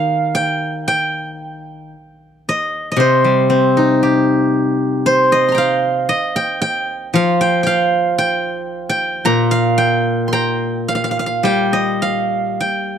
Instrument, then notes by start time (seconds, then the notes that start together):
guzheng
Already playing: D#3 D#5 F5
0.35 G5
0.88 G5
2.49 D#5
2.92 D#5
2.96 C3 C5
3.24 G3
3.50 C4
3.77 D#4
4.03 G4
5.06 C5
5.32 D#5
5.48 A#5 C6
5.55 F5 G5
6.09 D#5
6.36 G5
6.62 G5
7.14 F3 F5
7.41 G5
7.63 F5 G5
8.18 G5
8.89 G5
9.25 A#2 A#5
9.51 F5
9.78 G5
10.28 C6
10.33 G5 A#5
10.88 F5
10.95 F5
11.04 F5
11.11 F5
11.19 F5
11.26 F5
11.43 G3 G5
11.73 D#5
12.02 F5
12.60 G5